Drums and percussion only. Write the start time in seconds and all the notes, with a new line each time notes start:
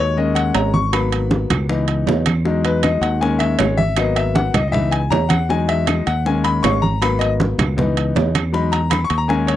0.17 high conga
0.36 high conga, high timbale
0.55 high conga, high timbale, low timbale
0.74 high conga
0.93 high bongo, high timbale, claves
1.12 high conga, high timbale
1.31 high bongo, high conga, low timbale
1.50 high conga, low conga, high timbale, claves
1.69 high bongo, high conga
1.88 high conga, high timbale
2.07 high bongo, low bongo, high conga, low timbale
2.26 high conga, high timbale, claves
2.46 high bongo, high conga
2.65 high bongo, high conga, high timbale
2.83 high bongo, high conga, high timbale, low timbale, claves
3.03 high conga, high timbale
3.22 high bongo, high conga
3.40 high bongo, high conga, high timbale
3.59 high bongo, low bongo, high conga, high timbale, low timbale, claves
3.78 high bongo, high conga
3.97 high bongo, high conga, high timbale, claves
4.16 high conga, high timbale
4.35 high bongo, high conga, low timbale
4.54 high conga, low conga, high timbale, claves
4.73 high bongo, high conga, low conga
4.92 high conga, high timbale
5.11 high bongo, low bongo, high conga, low timbale
5.30 high conga, high timbale, claves
5.49 high bongo, high conga
5.69 high bongo, high conga, high timbale
5.87 high bongo, high conga, high timbale, low timbale, claves
6.06 high conga, high timbale
6.25 high bongo, high conga
6.45 high bongo, high conga, high timbale
6.64 high bongo, low bongo, high conga, high timbale, low timbale, claves
6.83 high bongo, high conga
7.02 high bongo, high conga, high timbale, claves
7.21 high conga, high timbale
7.40 high bongo, high conga, low timbale
7.59 high conga, low conga, high timbale, claves
7.78 high bongo, high conga, low conga
7.97 high conga, high timbale
8.15 high bongo, low bongo, high conga, low timbale
8.35 high conga, high timbale, claves
8.54 high bongo
8.73 high bongo, high conga, high timbale
8.91 high bongo, high conga, high timbale, low timbale, claves
9.10 high conga, high timbale
9.30 high bongo, high conga
9.48 high bongo, high conga, high timbale